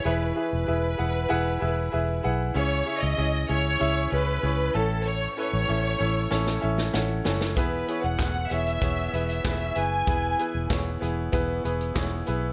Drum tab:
HH |----------------|----------------|----------------|x-x-x-xxx-xxx-x-|
CP |----------------|----------------|----------------|----x-------x---|
SD |----------------|----------------|--------oo-oo-oo|----o-------o---|
BD |----------------|----------------|----------------|o---o---o---o---|

HH |x-x-x-x-x-xxx-x-|
CP |----x-------x---|
SD |----o-------o---|
BD |o---o---o---o---|